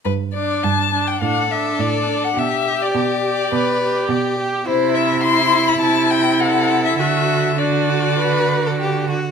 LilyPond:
<<
  \new Staff \with { instrumentName = "Violin" } { \time 4/4 \key g \major \tempo 4 = 104 b'8 d''8 a''8. g''16 fis''8 e''8 d''8. fis''16 | e''8. d''16 d''2~ d''8 r8 | c''8 e''8 c'''8. b''16 a''8 g''8 fis''8. e''16 | e''4 d''2~ d''8 r8 | }
  \new Staff \with { instrumentName = "Violin" } { \time 4/4 \key g \major r2 a'2 | g'2 b'4 g'4 | e'2. a'4 | fis'4 d'8 fis'8 b'8. a'16 g'8 fis'8 | }
  \new Staff \with { instrumentName = "Viola" } { \time 4/4 \key g \major r8 d'4 d'8 d'8 d'4 d'8 | r8 g'4 g'4 g'4 g'8 | e'4 e'4 e'2 | fis'4 fis'2~ fis'8 r8 | }
  \new Staff \with { instrumentName = "Cello" } { \clef bass \time 4/4 \key g \major g,4 g,4 a,4 a,4 | b,4 b,4 b,4 b,4 | c2 c2 | d2.~ d8 r8 | }
>>